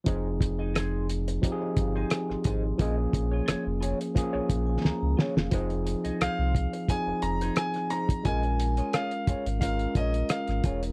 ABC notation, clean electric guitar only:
X:1
M:4/4
L:1/16
Q:"Swing 16ths" 1/4=88
K:Fm
V:1 name="Clean electric guitar"
[EAc] z2 [EAe] [EAc]2 z4 z [EAc] z2 [EAc] z | [FAe] z2 [FAd] [FAd] z [FAd] z2 [FAd] z4 [FAd] z | [EAc] z2 [EAe] [EAc]2 z4 z [EAc] z2 [EAc] z | [FAe] z2 [FAd] [FAd] z [FAd] z3 [FAd] z3 [FAd] z |]